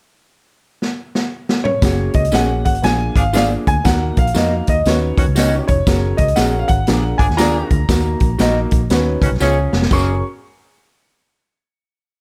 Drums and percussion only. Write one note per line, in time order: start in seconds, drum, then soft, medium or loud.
0.82 snare medium
1.15 snare medium
1.49 snare medium
1.65 mid tom medium
1.82 kick loud
1.82 snare loud
1.82 closed hi-hat medium
1.82 tambourine medium
2.13 kick medium
2.13 closed hi-hat medium
2.25 closed hi-hat soft
2.32 snare loud
2.32 closed hi-hat medium
2.32 tambourine medium
2.65 kick medium
2.65 closed hi-hat medium
2.75 closed hi-hat soft
2.83 snare loud
2.83 closed hi-hat medium
2.83 tambourine medium
3.16 kick medium
3.16 closed hi-hat medium
3.33 snare loud
3.33 closed hi-hat medium
3.33 tambourine medium
3.67 kick medium
3.67 closed hi-hat medium
3.85 kick loud
3.85 snare loud
3.85 closed hi-hat medium
3.85 tambourine medium
4.17 kick medium
4.17 closed hi-hat medium
4.27 closed hi-hat soft
4.35 snare loud
4.35 closed hi-hat medium
4.35 tambourine medium
4.67 kick medium
4.67 closed hi-hat medium
4.86 snare loud
4.86 closed hi-hat medium
4.86 tambourine medium
5.18 kick medium
5.18 closed hi-hat medium
5.36 snare loud
5.36 closed hi-hat medium
5.36 tambourine medium
5.68 kick medium
5.68 closed hi-hat medium
5.87 kick loud
5.87 snare loud
5.87 closed hi-hat medium
5.87 tambourine medium
6.18 kick medium
6.18 closed hi-hat medium
6.28 closed hi-hat soft
6.36 snare loud
6.36 closed hi-hat medium
6.36 tambourine medium
6.68 kick medium
6.68 closed hi-hat medium
6.87 snare loud
6.87 closed hi-hat medium
6.87 tambourine medium
7.19 kick medium
7.19 closed hi-hat medium
7.30 snare soft
7.38 snare loud
7.38 closed hi-hat medium
7.38 tambourine loud
7.70 kick medium
7.70 closed hi-hat medium
7.89 kick loud
7.89 snare loud
7.89 closed hi-hat loud
7.89 tambourine medium
8.20 kick medium
8.20 closed hi-hat medium
8.39 snare loud
8.39 closed hi-hat medium
8.39 tambourine medium
8.71 kick medium
8.71 closed hi-hat medium
8.90 snare loud
8.90 closed hi-hat medium
8.90 tambourine medium
9.22 kick medium
9.22 closed hi-hat medium
9.40 snare soft
9.40 tambourine medium
9.73 snare medium
9.82 snare medium
9.91 kick loud
9.91 crash medium
9.91 tambourine medium